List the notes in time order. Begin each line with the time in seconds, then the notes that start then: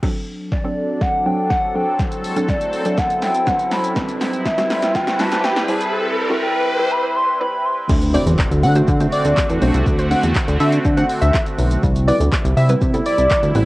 0.03 F#3 C4 D4 A4, kick, snare, crash, riser
0.52 D5, kick, snare
0.64 F#3 C4 D4 A4
1.01 F#5, kick, snare
1.25 F#3 C4 D4 A4 G5
1.50 F#5, kick, snare
1.75 F#3 C4 D4 A4 G5
1.99 E4, kick, snare, shaker
2.12 closed hi-hat, shaker
2.24 open hi-hat, shaker
2.36 F#3 C4 D4 A4, closed hi-hat, shaker
2.49 D5, kick, snare, shaker
2.61 closed hi-hat, shaker
2.73 open hi-hat, shaker
2.85 F#3 C4 D4 A4, closed hi-hat, shaker
2.98 F#5, kick, snare, shaker
3.10 closed hi-hat, shaker
3.22 G5, snare, open hi-hat, shaker
3.35 closed hi-hat, shaker
3.47 F#3 C4 D4 B4 F#5, kick, snare, shaker
3.59 closed hi-hat, shaker
3.71 B5, snare, open hi-hat, shaker
3.84 closed hi-hat, shaker
3.96 G3 C4 E4 B4, kick, snare, shaker
4.09 closed hi-hat, shaker
4.21 snare, open hi-hat, shaker
4.33 closed hi-hat, shaker
4.45 E5, kick, snare, shaker
4.57 G3 C4 E4 F#4, snare, closed hi-hat, shaker
4.70 snare, open hi-hat, shaker
4.82 snare, closed hi-hat, shaker
4.95 G5, kick, snare, shaker
5.07 snare, closed hi-hat, shaker
5.19 G3 C4 E4 B4 A5, snare, open hi-hat, shaker
5.32 snare, closed hi-hat, shaker
5.44 G5, snare, shaker
5.56 snare, closed hi-hat, shaker
5.68 G3 C4 E4 C5 A5, open hi-hat, shaker
5.81 closed hi-hat, shaker
6.30 G3 C4 E4 F#4
6.42 G5
6.79 G3 C4 E4 B4
6.91 B5
7.16 C6
7.40 G3 C4 E4 B4 B5
7.65 C6
7.90 D2 D3 A3 C4 F#4, kick, crash, impact, shaker
8.02 closed hi-hat, shaker
8.14 A3 C4 D4 F#4 C5 D5, open hi-hat, shaker
8.26 E2, closed hi-hat, shaker
8.39 kick, clap, shaker
8.51 D2, closed hi-hat, shaker
8.63 D3 F#5, open hi-hat, shaker
8.75 A3 C4 D4 F#4 C5, closed hi-hat, shaker
8.88 D3, kick, shaker
9.00 A3 C4 D4 F#4 C5, closed hi-hat, shaker
9.12 D5, open hi-hat, shaker
9.25 D2, closed hi-hat, shaker
9.37 kick, clap, shaker
9.49 E2, closed hi-hat, shaker
9.61 B1 A3 C4 D4 F#4 C5, open hi-hat, shaker
9.74 C2, closed hi-hat, shaker
9.86 D2, kick, shaker
9.98 F#4 C5, closed hi-hat, shaker
10.11 A3 C4 D4 F#4 C5 F#5, open hi-hat, shaker
10.23 E2, closed hi-hat, shaker
10.35 kick, clap, shaker
10.48 D2, closed hi-hat, shaker
10.60 D3 E5, open hi-hat, shaker
10.72 closed hi-hat, shaker
10.85 D3, kick, shaker
10.97 A3 C4 D4 F#4 C5 F#5, closed hi-hat, shaker
11.09 open hi-hat, shaker
11.21 D2 E5, closed hi-hat, shaker
11.34 kick, clap, shaker
11.46 closed hi-hat, shaker
11.58 B1, open hi-hat, shaker
11.71 closed hi-hat, shaker
11.83 C2 C3 G3 E4, kick, shaker
11.96 closed hi-hat, shaker
12.08 G3 B3 C4 E4 B4 D5, open hi-hat, shaker
12.20 D2, closed hi-hat, shaker
12.32 kick, clap, shaker
12.45 C2, closed hi-hat, shaker
12.57 C3 E5, open hi-hat, shaker
12.69 G3 B3 C4 E4 B4, closed hi-hat, shaker
12.81 C3, kick, shaker
12.94 G3 B3 C4 E4 A4, closed hi-hat, shaker
13.06 D5, open hi-hat, shaker
13.18 C2, closed hi-hat, shaker
13.31 kick, clap, shaker
13.43 D2, closed hi-hat, shaker
13.55 A1 G3 B3 C4 E4 B4, open hi-hat, shaker